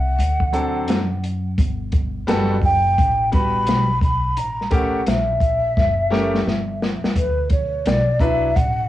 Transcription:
0.00 0.15 C2 medium
0.00 1.24 F#5 medium
0.19 0.89 D2 loud
0.19 closed hi-hat medium
0.40 kick medium
0.53 0.97 F#3 medium
0.53 0.97 C4 medium
0.53 0.97 D4 medium
0.53 0.97 A4 medium
0.53 closed hi-hat medium
0.88 1.55 F#2 medium
0.88 snare loud
0.88 closed hi-hat loud
1.24 closed hi-hat medium
1.58 2.24 G1 loud
1.58 kick loud
1.58 closed hi-hat medium
1.92 kick medium
1.92 closed hi-hat medium
2.27 2.94 F#1 medium
2.27 2.55 G3 medium
2.27 2.55 B3 medium
2.27 2.55 F#4 medium
2.27 2.55 A4 medium
2.27 snare loud
2.27 closed hi-hat medium
2.62 3.30 G5 loud
2.62 kick medium
2.62 open hi-hat soft
2.98 3.67 A1 loud
2.98 kick medium
2.98 closed hi-hat medium
3.31 3.85 G3 medium
3.31 3.85 B3 medium
3.31 3.85 F#4 medium
3.31 3.85 B4 medium
3.31 3.99 B5 loud
3.31 kick medium
3.31 closed hi-hat medium
3.66 4.37 B1 medium
3.66 snare loud
3.66 closed hi-hat loud
4.01 4.39 B5 loud
4.01 kick medium
4.01 closed hi-hat medium
4.37 5.03 A1 loud
4.37 4.72 A#5 medium
4.37 closed hi-hat medium
4.61 snare soft
4.71 4.98 A3 medium
4.71 4.99 C#4 medium
4.71 4.99 G4 medium
4.71 4.99 A#4 medium
4.71 5.10 F#5 medium
4.71 kick loud
4.71 closed hi-hat medium
5.06 5.73 A#1 medium
5.06 6.82 E5 medium
5.06 snare loud
5.06 closed hi-hat medium
5.40 kick medium
5.40 closed hi-hat medium
5.77 6.43 F#1 medium
5.77 kick medium
5.77 snare medium
6.10 6.38 A3 medium
6.10 6.38 C#4 medium
6.10 6.39 G4 medium
6.10 6.39 A#4 medium
6.10 snare medium
6.35 snare medium
6.47 7.01 G1 medium
6.47 snare medium
6.82 snare medium
7.04 muted upright bass stroke soft
7.04 snare medium
7.16 7.82 D2 loud
7.16 7.49 B4 medium
7.16 kick loud
7.16 closed hi-hat medium
7.50 7.88 C#5 medium
7.50 kick loud
7.50 closed hi-hat medium
7.86 8.52 B1 medium
7.86 8.22 D5 medium
7.86 snare loud
7.86 closed hi-hat medium
8.20 8.48 F#3 medium
8.20 8.48 D4 medium
8.20 8.48 E4 medium
8.20 8.48 B4 medium
8.20 8.57 E5 medium
8.20 kick medium
8.20 closed hi-hat medium
8.56 8.88 A1 medium
8.56 8.88 F#5 medium
8.56 kick medium
8.56 closed hi-hat medium

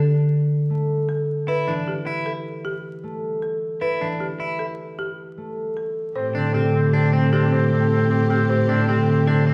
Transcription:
0.00 1.50 D3 medium
0.00 0.69 A3 medium
0.00 0.17 A4 medium
0.70 3.02 A3 medium
1.09 1.34 A4 medium
1.48 1.73 E4 medium
1.48 1.73 B4 medium
1.67 4.00 E3 medium
1.67 1.93 D4 medium
1.88 2.12 G4 medium
2.06 2.32 E4 medium
2.26 2.51 A4 medium
2.65 2.90 G4 medium
3.04 5.36 A3 medium
3.42 3.68 A4 soft
3.81 4.07 E4 medium
3.81 4.07 B4 medium
4.01 6.17 E3 medium
4.01 4.27 D4 soft
4.20 4.46 G4 soft
4.40 4.65 E4 medium
4.59 4.85 A4 soft
4.99 5.24 G4 medium
5.38 7.12 A3 medium
5.77 6.02 A4 soft
6.15 9.54 A2 medium
6.15 9.54 C4 medium
6.15 6.29 C4 soft
6.15 9.54 G4 medium
6.15 6.41 C5 medium
6.35 8.68 D3 medium
6.35 6.49 C4 soft
6.35 6.54 D4 medium
6.54 8.87 C3 medium
6.54 6.80 C4 medium
6.54 6.68 C4 soft
6.54 6.80 G4 medium
6.74 6.88 C4 medium
6.93 7.07 C4 soft
6.93 7.13 D4 medium
6.93 7.19 A4 medium
7.13 7.70 A3 medium
7.13 7.32 C4 medium
7.13 7.27 C4 medium
7.33 7.46 C4 medium
7.33 7.58 D4 medium
7.33 7.58 G4 medium
7.52 7.66 C4 medium
7.52 7.77 C5 medium
7.71 9.45 A3 medium
7.71 7.85 C4 medium
7.91 8.05 C4 medium
8.11 8.24 C4 medium
8.11 8.36 A4 soft
8.30 8.43 C4 medium
8.30 9.54 C4 medium
8.30 8.55 G4 medium
8.49 8.63 C4 medium
8.49 8.75 C5 medium
8.69 9.54 D3 medium
8.69 8.82 C4 medium
8.69 8.88 D4 medium
8.88 9.54 C3 medium
8.88 9.02 C4 medium
8.88 9.14 C4 medium
8.88 9.14 G4 medium
9.08 9.21 C4 medium
9.27 9.41 C4 medium
9.27 9.47 D4 medium
9.27 9.53 A4 medium
9.46 9.54 A3 medium
9.46 9.54 C4 medium

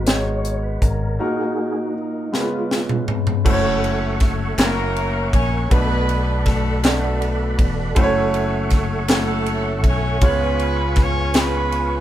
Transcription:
0.00 0.79 G#1 medium
0.00 1.22 G#2 medium
0.00 0.06 G#3 medium
0.00 0.07 B3 medium
0.00 0.07 D#4 medium
0.00 0.07 F#4 medium
0.00 1.21 A#4 medium
0.06 0.79 G#3 medium
0.06 0.80 B3 medium
0.06 0.80 D#4 medium
0.06 0.80 F#4 medium
0.06 0.59 C#5 medium
0.06 0.80 C#5 medium
0.06 snare loud
0.06 closed hi-hat medium
0.45 closed hi-hat soft
0.63 0.83 B4 medium
0.82 1.17 G#1 medium
0.82 1.21 A#4 medium
0.82 kick medium
0.82 closed hi-hat medium
1.19 2.29 A#2 medium
1.19 2.29 A#3 medium
1.19 1.92 D#4 medium
1.19 1.94 D#4 soft
1.19 1.93 F#4 medium
1.19 1.75 F#4 medium
1.19 1.79 G#4 medium
1.19 1.93 A#4 medium
1.77 1.94 F#4 medium
1.96 2.34 D#4 medium
2.32 3.42 C#3 medium
2.32 3.05 G#3 medium
2.32 3.41 G#3 medium
2.32 3.05 B3 medium
2.32 3.42 B3 medium
2.32 3.06 C#4 medium
2.32 3.06 F4 medium
2.32 3.05 F4 medium
2.32 2.40 A#4 medium
2.32 snare medium
2.40 3.09 B4 medium
2.71 snare medium
2.89 mid tom medium
3.08 floor tom medium
3.27 floor tom medium
3.45 4.55 F#1 loud
3.45 4.18 A3 loud
3.45 4.18 C#4 medium
3.45 4.18 E4 medium
3.45 4.18 F#4 medium
3.45 4.57 A4 medium
3.45 3.52 C5 medium
3.45 5.69 E5 medium
3.45 5.69 F#5 medium
3.45 4.56 C#6 medium
3.45 kick loud
3.45 crash loud
3.53 4.22 C#5 loud
3.84 ride soft
4.20 kick medium
4.20 snare soft
4.20 ride medium
4.57 5.29 F#1 loud
4.57 4.65 A3 medium
4.57 5.30 A#3 medium
4.57 5.31 C#4 medium
4.57 5.33 C#4 medium
4.57 5.31 E4 medium
4.57 5.67 E4 medium
4.57 5.31 F#4 medium
4.57 5.69 A#4 medium
4.57 5.30 A#4 loud
4.57 5.31 C#5 medium
4.57 5.70 C#6 medium
4.57 snare loud
4.57 clap medium
4.57 ride medium
4.64 5.34 A#3 medium
4.96 ride soft
5.33 5.68 A#1 medium
5.33 5.68 C#4 medium
5.33 5.68 C#5 loud
5.33 kick medium
5.33 ride medium
5.70 7.55 B1 medium
5.70 6.80 B2 medium
5.70 6.43 A3 medium
5.70 6.43 B3 medium
5.70 6.42 B3 loud
5.70 6.44 D4 medium
5.70 6.81 D4 medium
5.70 6.44 F#4 medium
5.70 6.81 F#4 medium
5.70 10.18 A4 medium
5.70 6.42 B4 loud
5.70 6.44 B4 medium
5.70 7.94 D5 medium
5.70 10.18 F#5 medium
5.70 7.94 B5 medium
5.70 kick loud
5.70 ride medium
6.09 ride soft
6.45 6.81 A3 medium
6.45 6.81 A4 medium
6.45 kick medium
6.45 snare soft
6.45 ride medium
6.83 7.64 A3 medium
6.83 7.56 A3 medium
6.83 7.56 B3 medium
6.83 7.56 D4 medium
6.83 7.93 D4 medium
6.83 7.56 F#4 medium
6.83 7.93 F#4 medium
6.83 7.64 A4 medium
6.83 7.57 D5 medium
6.83 snare loud
6.83 clap medium
6.83 ride medium
7.22 ride soft
7.59 7.93 E1 loud
7.59 kick medium
7.59 ride medium
7.95 9.84 F#1 loud
7.95 8.68 A3 loud
7.95 8.69 C#4 medium
7.95 8.69 E4 loud
7.95 8.69 F#4 medium
7.95 8.03 C5 medium
7.95 10.20 E5 medium
7.95 10.20 C#6 medium
7.95 kick loud
7.95 ride medium
8.03 8.72 C#5 loud
8.34 ride soft
8.70 kick medium
8.70 snare soft
8.70 ride medium
9.08 9.81 A3 medium
9.08 9.81 C#4 medium
9.08 9.86 C#4 medium
9.08 9.82 E4 medium
9.08 10.18 E4 medium
9.08 9.82 F#4 medium
9.08 9.81 A4 loud
9.08 9.82 C#5 medium
9.08 snare loud
9.08 clap medium
9.08 ride medium
9.46 ride soft
9.84 10.18 B1 loud
9.84 10.23 C#4 loud
9.84 10.23 C#5 loud
9.84 kick medium
9.84 ride medium
10.21 12.00 C#2 loud
10.21 11.31 C#3 medium
10.21 10.94 B3 medium
10.21 10.98 B3 loud
10.21 10.94 C#4 medium
10.21 10.94 F4 medium
10.21 11.31 F4 medium
10.21 10.95 G#4 medium
10.21 11.31 G#4 medium
10.21 12.00 B4 medium
10.21 10.98 B4 loud
10.21 10.95 C#5 loud
10.21 12.00 F5 medium
10.21 12.00 G#5 medium
10.21 12.00 C#6 medium
10.21 kick loud
10.21 ride medium
10.60 ride soft
10.96 kick loud
10.96 snare soft
10.96 ride medium
11.01 11.36 C#4 medium
11.01 11.36 C#5 loud
11.34 12.00 B3 medium
11.34 12.00 C#4 medium
11.34 12.00 F4 medium
11.34 12.00 G#4 medium
11.34 12.00 B4 medium
11.34 snare loud
11.34 clap medium
11.34 ride medium
11.72 ride soft

